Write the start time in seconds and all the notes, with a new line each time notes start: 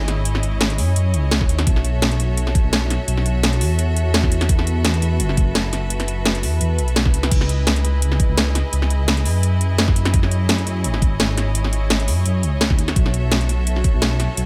Already playing: E4 G#4 C#5 D#5
0.08 G#1, snare, closed hi-hat
0.25 closed hi-hat
0.35 snare
0.43 closed hi-hat
0.61 snare, closed hi-hat
0.70 closed hi-hat
0.78 F#2, open hi-hat
0.96 F#2, closed hi-hat
1.14 C#2, closed hi-hat
1.31 snare, closed hi-hat
1.41 kick, snare
1.49 D#2, closed hi-hat
1.59 snare, closed hi-hat
1.66 B1 F#4 A4 E5, kick, closed hi-hat
1.76 snare
1.85 closed hi-hat
2.02 snare, closed hi-hat
2.11 closed hi-hat
2.20 closed hi-hat
2.37 closed hi-hat
2.47 snare
2.55 kick, closed hi-hat
2.64 B1
2.73 snare, closed hi-hat
2.90 snare, closed hi-hat
3.08 B1, closed hi-hat
3.17 snare
3.26 closed hi-hat
3.43 snare, closed hi-hat
3.53 closed hi-hat
3.61 E2, open hi-hat
3.79 closed hi-hat
3.97 closed hi-hat
4.14 snare, closed hi-hat
4.23 kick, snare
4.32 closed hi-hat
4.41 snare, closed hi-hat
4.49 B4, kick, closed hi-hat
4.59 snare
4.67 closed hi-hat
4.85 snare, closed hi-hat
4.94 closed hi-hat
5.02 E2, closed hi-hat
5.20 F#1, closed hi-hat
5.29 snare
5.37 kick, closed hi-hat
5.55 snare, closed hi-hat
5.73 F#1, snare, closed hi-hat
5.90 closed hi-hat
6.00 snare, closed hi-hat
6.08 closed hi-hat
6.26 snare, closed hi-hat
6.35 closed hi-hat
6.43 E2, open hi-hat
6.61 E2, closed hi-hat
6.79 B1, closed hi-hat
6.88 closed hi-hat
6.96 snare, closed hi-hat
7.05 kick, snare
7.14 C#2, closed hi-hat
7.23 snare, closed hi-hat
7.31 C#2 E4 G#4 D#5, kick, closed hi-hat, crash
7.41 snare
7.49 closed hi-hat
7.67 snare, closed hi-hat
7.76 closed hi-hat
7.85 closed hi-hat
8.02 closed hi-hat
8.12 snare
8.20 kick, closed hi-hat
8.29 C#2
8.38 snare, closed hi-hat
8.55 snare, closed hi-hat
8.73 C#2, closed hi-hat
8.82 snare
8.90 closed hi-hat
9.08 snare, closed hi-hat
9.17 closed hi-hat
9.25 F#2, open hi-hat
9.43 closed hi-hat
9.61 closed hi-hat
9.78 snare, closed hi-hat
9.88 kick, snare
9.96 closed hi-hat
10.05 snare, closed hi-hat
10.14 C#5, kick, closed hi-hat
10.23 snare
10.31 closed hi-hat
10.49 snare, closed hi-hat
10.58 closed hi-hat
10.67 F#2, closed hi-hat
10.84 G#1, closed hi-hat
10.94 snare
11.02 kick, closed hi-hat
11.20 snare, closed hi-hat
11.37 G#1, snare, closed hi-hat
11.55 closed hi-hat
11.64 snare
11.73 closed hi-hat
11.90 snare, closed hi-hat
12.00 closed hi-hat
12.08 F#2, open hi-hat
12.26 F#2, closed hi-hat
12.43 C#2, closed hi-hat
12.61 snare, closed hi-hat
12.70 kick, snare
12.78 D#2, closed hi-hat
12.88 snare, closed hi-hat
12.96 B1 F#4 A4 E5, kick, closed hi-hat
13.06 snare
13.14 closed hi-hat
13.32 snare, closed hi-hat
13.41 closed hi-hat
13.49 closed hi-hat
13.67 closed hi-hat
13.76 snare
13.84 kick, closed hi-hat
13.94 B1
14.02 snare, closed hi-hat
14.20 snare, closed hi-hat
14.37 B1, closed hi-hat